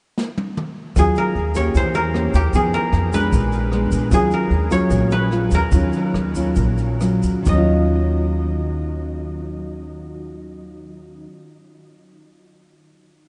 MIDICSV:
0, 0, Header, 1, 5, 480
1, 0, Start_track
1, 0, Key_signature, -6, "minor"
1, 0, Tempo, 393701
1, 1177, Time_signature, 4, 2, 24, 8
1, 5499, Tempo, 408163
1, 7419, Tempo, 442804
1, 8859, Tempo, 462606
1, 14889, End_track
2, 0, Start_track
2, 0, Title_t, "Koto"
2, 0, Program_c, 0, 107
2, 1203, Note_on_c, 0, 68, 82
2, 1437, Note_on_c, 0, 70, 90
2, 1906, Note_on_c, 0, 73, 76
2, 2158, Note_on_c, 0, 72, 85
2, 2231, Note_off_c, 0, 73, 0
2, 2371, Note_off_c, 0, 70, 0
2, 2376, Note_on_c, 0, 70, 89
2, 2870, Note_on_c, 0, 67, 83
2, 2943, Note_off_c, 0, 68, 0
2, 3114, Note_on_c, 0, 68, 79
2, 3187, Note_off_c, 0, 67, 0
2, 3336, Note_off_c, 0, 70, 0
2, 3341, Note_on_c, 0, 70, 84
2, 3830, Note_on_c, 0, 71, 81
2, 3904, Note_off_c, 0, 70, 0
2, 3904, Note_off_c, 0, 72, 0
2, 5042, Note_off_c, 0, 68, 0
2, 5047, Note_on_c, 0, 68, 83
2, 5287, Note_on_c, 0, 70, 77
2, 5360, Note_off_c, 0, 71, 0
2, 5747, Note_on_c, 0, 73, 89
2, 6218, Note_on_c, 0, 71, 89
2, 6289, Note_off_c, 0, 70, 0
2, 6718, Note_on_c, 0, 70, 76
2, 6789, Note_off_c, 0, 71, 0
2, 7380, Note_off_c, 0, 68, 0
2, 7674, Note_off_c, 0, 73, 0
2, 8766, Note_off_c, 0, 70, 0
2, 8877, Note_on_c, 0, 75, 69
2, 12807, Note_off_c, 0, 75, 0
2, 14889, End_track
3, 0, Start_track
3, 0, Title_t, "Nylon-string guitar"
3, 0, Program_c, 1, 24
3, 1177, Note_on_c, 1, 51, 51
3, 1181, Note_on_c, 1, 54, 48
3, 1183, Note_on_c, 1, 61, 50
3, 1186, Note_on_c, 1, 65, 53
3, 1655, Note_off_c, 1, 54, 0
3, 1655, Note_off_c, 1, 61, 0
3, 1658, Note_off_c, 1, 65, 0
3, 1895, Note_on_c, 1, 58, 54
3, 1900, Note_on_c, 1, 61, 54
3, 1903, Note_on_c, 1, 67, 59
3, 2112, Note_off_c, 1, 51, 0
3, 2135, Note_on_c, 1, 52, 49
3, 2576, Note_off_c, 1, 58, 0
3, 2578, Note_off_c, 1, 61, 0
3, 2578, Note_off_c, 1, 67, 0
3, 2608, Note_on_c, 1, 58, 54
3, 2616, Note_on_c, 1, 61, 52
3, 2620, Note_on_c, 1, 67, 53
3, 2921, Note_off_c, 1, 58, 0
3, 2923, Note_off_c, 1, 61, 0
3, 2926, Note_off_c, 1, 67, 0
3, 3070, Note_off_c, 1, 52, 0
3, 3103, Note_on_c, 1, 59, 56
3, 3106, Note_on_c, 1, 53, 56
3, 3112, Note_on_c, 1, 63, 54
3, 3116, Note_on_c, 1, 68, 51
3, 3780, Note_off_c, 1, 59, 0
3, 3785, Note_off_c, 1, 63, 0
3, 3785, Note_off_c, 1, 68, 0
3, 3811, Note_off_c, 1, 53, 0
3, 3816, Note_on_c, 1, 56, 57
3, 3825, Note_on_c, 1, 62, 55
3, 4061, Note_on_c, 1, 46, 48
3, 4497, Note_off_c, 1, 56, 0
3, 4501, Note_off_c, 1, 62, 0
3, 4546, Note_on_c, 1, 56, 59
3, 4550, Note_on_c, 1, 59, 56
3, 4555, Note_on_c, 1, 62, 56
3, 4982, Note_off_c, 1, 56, 0
3, 4985, Note_off_c, 1, 59, 0
3, 4987, Note_off_c, 1, 62, 0
3, 4994, Note_off_c, 1, 46, 0
3, 5017, Note_on_c, 1, 51, 53
3, 5022, Note_on_c, 1, 54, 57
3, 5022, Note_on_c, 1, 61, 51
3, 5031, Note_on_c, 1, 65, 57
3, 5496, Note_off_c, 1, 54, 0
3, 5499, Note_off_c, 1, 61, 0
3, 5499, Note_off_c, 1, 65, 0
3, 5728, Note_on_c, 1, 54, 59
3, 5738, Note_on_c, 1, 65, 64
3, 5739, Note_on_c, 1, 61, 62
3, 5944, Note_off_c, 1, 51, 0
3, 5975, Note_on_c, 1, 46, 50
3, 6401, Note_off_c, 1, 54, 0
3, 6406, Note_off_c, 1, 65, 0
3, 6407, Note_off_c, 1, 61, 0
3, 6449, Note_on_c, 1, 54, 52
3, 6455, Note_on_c, 1, 61, 52
3, 6458, Note_on_c, 1, 65, 56
3, 6755, Note_off_c, 1, 54, 0
3, 6757, Note_off_c, 1, 61, 0
3, 6759, Note_off_c, 1, 65, 0
3, 6904, Note_off_c, 1, 46, 0
3, 6931, Note_on_c, 1, 51, 55
3, 6938, Note_on_c, 1, 54, 51
3, 6944, Note_on_c, 1, 65, 60
3, 6946, Note_on_c, 1, 61, 56
3, 7420, Note_off_c, 1, 54, 0
3, 7421, Note_off_c, 1, 61, 0
3, 7424, Note_off_c, 1, 65, 0
3, 7652, Note_on_c, 1, 54, 55
3, 7658, Note_on_c, 1, 61, 60
3, 7662, Note_on_c, 1, 65, 67
3, 7865, Note_off_c, 1, 51, 0
3, 7878, Note_on_c, 1, 46, 47
3, 8325, Note_off_c, 1, 54, 0
3, 8328, Note_off_c, 1, 61, 0
3, 8331, Note_off_c, 1, 65, 0
3, 8353, Note_on_c, 1, 54, 56
3, 8356, Note_on_c, 1, 61, 48
3, 8366, Note_on_c, 1, 65, 58
3, 8809, Note_on_c, 1, 51, 58
3, 8812, Note_off_c, 1, 54, 0
3, 8815, Note_off_c, 1, 61, 0
3, 8817, Note_off_c, 1, 65, 0
3, 8829, Note_off_c, 1, 46, 0
3, 8874, Note_on_c, 1, 54, 67
3, 8925, Note_on_c, 1, 61, 69
3, 8968, Note_on_c, 1, 65, 70
3, 12784, Note_off_c, 1, 51, 0
3, 12846, Note_off_c, 1, 54, 0
3, 12897, Note_off_c, 1, 61, 0
3, 12940, Note_off_c, 1, 65, 0
3, 14889, End_track
4, 0, Start_track
4, 0, Title_t, "Upright bass"
4, 0, Program_c, 2, 32
4, 1175, Note_on_c, 2, 39, 89
4, 1399, Note_off_c, 2, 39, 0
4, 1650, Note_on_c, 2, 39, 67
4, 2098, Note_off_c, 2, 39, 0
4, 2128, Note_on_c, 2, 40, 78
4, 2802, Note_off_c, 2, 40, 0
4, 2849, Note_on_c, 2, 39, 74
4, 3074, Note_off_c, 2, 39, 0
4, 3091, Note_on_c, 2, 41, 87
4, 3315, Note_off_c, 2, 41, 0
4, 3565, Note_on_c, 2, 41, 83
4, 4016, Note_off_c, 2, 41, 0
4, 4053, Note_on_c, 2, 34, 79
4, 4726, Note_off_c, 2, 34, 0
4, 4775, Note_on_c, 2, 34, 73
4, 4999, Note_off_c, 2, 34, 0
4, 5012, Note_on_c, 2, 39, 91
4, 5237, Note_off_c, 2, 39, 0
4, 5488, Note_on_c, 2, 39, 77
4, 5928, Note_off_c, 2, 39, 0
4, 5962, Note_on_c, 2, 34, 82
4, 6633, Note_off_c, 2, 34, 0
4, 6678, Note_on_c, 2, 39, 73
4, 6906, Note_off_c, 2, 39, 0
4, 6921, Note_on_c, 2, 39, 95
4, 7151, Note_off_c, 2, 39, 0
4, 7415, Note_on_c, 2, 39, 70
4, 7850, Note_off_c, 2, 39, 0
4, 7876, Note_on_c, 2, 34, 74
4, 8561, Note_off_c, 2, 34, 0
4, 8601, Note_on_c, 2, 39, 67
4, 8836, Note_off_c, 2, 39, 0
4, 8852, Note_on_c, 2, 39, 79
4, 12783, Note_off_c, 2, 39, 0
4, 14889, End_track
5, 0, Start_track
5, 0, Title_t, "Drums"
5, 214, Note_on_c, 9, 38, 44
5, 336, Note_off_c, 9, 38, 0
5, 458, Note_on_c, 9, 48, 54
5, 579, Note_off_c, 9, 48, 0
5, 697, Note_on_c, 9, 47, 50
5, 819, Note_off_c, 9, 47, 0
5, 1171, Note_on_c, 9, 37, 59
5, 1171, Note_on_c, 9, 42, 52
5, 1173, Note_on_c, 9, 82, 59
5, 1174, Note_on_c, 9, 36, 57
5, 1293, Note_off_c, 9, 37, 0
5, 1293, Note_off_c, 9, 42, 0
5, 1295, Note_off_c, 9, 82, 0
5, 1296, Note_off_c, 9, 36, 0
5, 1408, Note_on_c, 9, 82, 23
5, 1411, Note_on_c, 9, 42, 34
5, 1530, Note_off_c, 9, 82, 0
5, 1533, Note_off_c, 9, 42, 0
5, 1652, Note_on_c, 9, 42, 40
5, 1774, Note_off_c, 9, 42, 0
5, 1888, Note_on_c, 9, 82, 55
5, 1890, Note_on_c, 9, 36, 21
5, 1892, Note_on_c, 9, 37, 54
5, 1892, Note_on_c, 9, 42, 40
5, 2010, Note_off_c, 9, 82, 0
5, 2012, Note_off_c, 9, 36, 0
5, 2014, Note_off_c, 9, 37, 0
5, 2014, Note_off_c, 9, 42, 0
5, 2131, Note_on_c, 9, 36, 55
5, 2131, Note_on_c, 9, 42, 54
5, 2131, Note_on_c, 9, 82, 56
5, 2252, Note_off_c, 9, 36, 0
5, 2253, Note_off_c, 9, 42, 0
5, 2253, Note_off_c, 9, 82, 0
5, 2370, Note_on_c, 9, 82, 23
5, 2372, Note_on_c, 9, 42, 38
5, 2492, Note_off_c, 9, 82, 0
5, 2494, Note_off_c, 9, 42, 0
5, 2613, Note_on_c, 9, 37, 58
5, 2613, Note_on_c, 9, 42, 40
5, 2735, Note_off_c, 9, 37, 0
5, 2735, Note_off_c, 9, 42, 0
5, 2849, Note_on_c, 9, 36, 21
5, 2850, Note_on_c, 9, 42, 38
5, 2853, Note_on_c, 9, 82, 65
5, 2971, Note_off_c, 9, 36, 0
5, 2972, Note_off_c, 9, 42, 0
5, 2975, Note_off_c, 9, 82, 0
5, 3084, Note_on_c, 9, 42, 58
5, 3087, Note_on_c, 9, 36, 57
5, 3092, Note_on_c, 9, 82, 60
5, 3206, Note_off_c, 9, 42, 0
5, 3209, Note_off_c, 9, 36, 0
5, 3214, Note_off_c, 9, 82, 0
5, 3328, Note_on_c, 9, 42, 36
5, 3337, Note_on_c, 9, 82, 22
5, 3450, Note_off_c, 9, 42, 0
5, 3459, Note_off_c, 9, 82, 0
5, 3567, Note_on_c, 9, 37, 56
5, 3567, Note_on_c, 9, 42, 41
5, 3689, Note_off_c, 9, 37, 0
5, 3689, Note_off_c, 9, 42, 0
5, 3812, Note_on_c, 9, 36, 22
5, 3816, Note_on_c, 9, 42, 38
5, 3816, Note_on_c, 9, 82, 64
5, 3934, Note_off_c, 9, 36, 0
5, 3938, Note_off_c, 9, 42, 0
5, 3938, Note_off_c, 9, 82, 0
5, 4049, Note_on_c, 9, 42, 48
5, 4052, Note_on_c, 9, 36, 55
5, 4055, Note_on_c, 9, 82, 60
5, 4171, Note_off_c, 9, 42, 0
5, 4174, Note_off_c, 9, 36, 0
5, 4177, Note_off_c, 9, 82, 0
5, 4289, Note_on_c, 9, 42, 39
5, 4297, Note_on_c, 9, 82, 25
5, 4411, Note_off_c, 9, 42, 0
5, 4419, Note_off_c, 9, 82, 0
5, 4531, Note_on_c, 9, 37, 51
5, 4531, Note_on_c, 9, 42, 37
5, 4653, Note_off_c, 9, 37, 0
5, 4653, Note_off_c, 9, 42, 0
5, 4775, Note_on_c, 9, 36, 21
5, 4775, Note_on_c, 9, 82, 66
5, 4777, Note_on_c, 9, 42, 36
5, 4897, Note_off_c, 9, 36, 0
5, 4897, Note_off_c, 9, 82, 0
5, 4899, Note_off_c, 9, 42, 0
5, 5014, Note_on_c, 9, 37, 56
5, 5014, Note_on_c, 9, 42, 51
5, 5015, Note_on_c, 9, 36, 48
5, 5018, Note_on_c, 9, 82, 64
5, 5136, Note_off_c, 9, 37, 0
5, 5136, Note_off_c, 9, 42, 0
5, 5137, Note_off_c, 9, 36, 0
5, 5140, Note_off_c, 9, 82, 0
5, 5255, Note_on_c, 9, 82, 25
5, 5258, Note_on_c, 9, 42, 35
5, 5377, Note_off_c, 9, 82, 0
5, 5379, Note_off_c, 9, 42, 0
5, 5495, Note_on_c, 9, 42, 40
5, 5613, Note_off_c, 9, 42, 0
5, 5730, Note_on_c, 9, 36, 25
5, 5733, Note_on_c, 9, 37, 56
5, 5733, Note_on_c, 9, 42, 41
5, 5733, Note_on_c, 9, 82, 60
5, 5848, Note_off_c, 9, 36, 0
5, 5850, Note_off_c, 9, 82, 0
5, 5851, Note_off_c, 9, 37, 0
5, 5851, Note_off_c, 9, 42, 0
5, 5962, Note_on_c, 9, 82, 58
5, 5964, Note_on_c, 9, 42, 51
5, 5966, Note_on_c, 9, 36, 56
5, 6080, Note_off_c, 9, 82, 0
5, 6081, Note_off_c, 9, 42, 0
5, 6084, Note_off_c, 9, 36, 0
5, 6202, Note_on_c, 9, 82, 24
5, 6205, Note_on_c, 9, 42, 42
5, 6320, Note_off_c, 9, 82, 0
5, 6323, Note_off_c, 9, 42, 0
5, 6441, Note_on_c, 9, 37, 51
5, 6441, Note_on_c, 9, 42, 41
5, 6558, Note_off_c, 9, 37, 0
5, 6558, Note_off_c, 9, 42, 0
5, 6675, Note_on_c, 9, 82, 64
5, 6681, Note_on_c, 9, 36, 23
5, 6681, Note_on_c, 9, 42, 44
5, 6792, Note_off_c, 9, 82, 0
5, 6799, Note_off_c, 9, 36, 0
5, 6799, Note_off_c, 9, 42, 0
5, 6919, Note_on_c, 9, 82, 60
5, 6923, Note_on_c, 9, 36, 47
5, 6923, Note_on_c, 9, 42, 53
5, 7036, Note_off_c, 9, 82, 0
5, 7040, Note_off_c, 9, 36, 0
5, 7041, Note_off_c, 9, 42, 0
5, 7164, Note_on_c, 9, 82, 25
5, 7169, Note_on_c, 9, 42, 34
5, 7281, Note_off_c, 9, 82, 0
5, 7287, Note_off_c, 9, 42, 0
5, 7419, Note_on_c, 9, 37, 55
5, 7419, Note_on_c, 9, 42, 37
5, 7528, Note_off_c, 9, 37, 0
5, 7528, Note_off_c, 9, 42, 0
5, 7644, Note_on_c, 9, 42, 40
5, 7645, Note_on_c, 9, 36, 22
5, 7645, Note_on_c, 9, 82, 67
5, 7752, Note_off_c, 9, 42, 0
5, 7753, Note_off_c, 9, 36, 0
5, 7753, Note_off_c, 9, 82, 0
5, 7869, Note_on_c, 9, 82, 57
5, 7878, Note_on_c, 9, 36, 52
5, 7878, Note_on_c, 9, 42, 45
5, 7977, Note_off_c, 9, 82, 0
5, 7986, Note_off_c, 9, 36, 0
5, 7986, Note_off_c, 9, 42, 0
5, 8107, Note_on_c, 9, 82, 23
5, 8115, Note_on_c, 9, 42, 36
5, 8215, Note_off_c, 9, 82, 0
5, 8224, Note_off_c, 9, 42, 0
5, 8356, Note_on_c, 9, 37, 59
5, 8356, Note_on_c, 9, 42, 37
5, 8356, Note_on_c, 9, 82, 51
5, 8465, Note_off_c, 9, 37, 0
5, 8465, Note_off_c, 9, 42, 0
5, 8465, Note_off_c, 9, 82, 0
5, 8594, Note_on_c, 9, 82, 62
5, 8602, Note_on_c, 9, 36, 21
5, 8605, Note_on_c, 9, 42, 37
5, 8702, Note_off_c, 9, 82, 0
5, 8711, Note_off_c, 9, 36, 0
5, 8713, Note_off_c, 9, 42, 0
5, 8841, Note_on_c, 9, 82, 84
5, 8851, Note_on_c, 9, 36, 65
5, 8852, Note_on_c, 9, 43, 58
5, 8946, Note_off_c, 9, 82, 0
5, 8955, Note_off_c, 9, 36, 0
5, 8956, Note_off_c, 9, 43, 0
5, 14889, End_track
0, 0, End_of_file